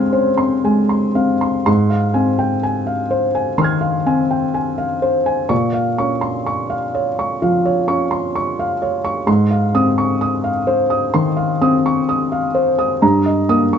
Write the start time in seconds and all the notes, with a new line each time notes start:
Already playing: G#3 C4 C#4 C5 F5 G#5 C6 F6 G#6
0.12 C#4 C5
0.38 C4 C6
0.64 G#3 G#5
0.89 C6
1.15 C4 F5
1.41 C6
1.66 G#2 C6
1.90 F5
2.14 C4 G#5
2.39 G5
2.63 G#5
2.87 F5
3.11 C5
3.35 G#5
3.58 D#3 C6 F6
3.64 G#6
3.81 F5
4.06 C4 G#5
4.31 G5
4.54 G#5
4.78 F5
5.02 C5
5.26 G#5
5.49 A#2 C#6
5.73 F5
5.98 C#4 C#6
6.21 C6
6.46 C#6
6.70 F5
6.95 C#5
7.19 C#6
7.42 F3 F5
7.65 C#5
7.88 C#4 C#6
8.11 C6
8.35 C#6
8.59 F5
8.82 C#5
9.05 C#6
9.27 G#2 C6
9.51 F5
9.75 C4 D#6
9.98 C#6
10.21 D#6
10.44 F5
10.67 C5
10.90 D#6
11.14 D#3 C6
11.37 F5
11.61 C4 D#6
11.86 C#6
12.09 D#6
12.32 F5
12.55 C5
12.79 D#6
13.02 G2 A#5
13.26 D#5
13.49 A#3 D#6
13.73 C#6